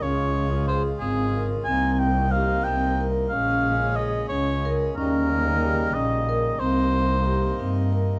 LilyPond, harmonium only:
<<
  \new Staff \with { instrumentName = "Harmonium" } { \time 5/8 \key c \phrygian \tempo 4 = 91 f'2~ f'8 | ees'2~ ees'8 | des'2~ des'8 | ees'2~ ees'8~ |
ees'2~ ees'8 | }
  \new Staff \with { instrumentName = "Harmonium" } { \clef bass \time 5/8 \key c \phrygian <des aes>2~ <des aes>8 | <c bes>2~ <c bes>8 | <des aes>2~ <des aes>8 | <des g>2~ <des g>8 |
<c bes>2~ <c bes>8 | }
>>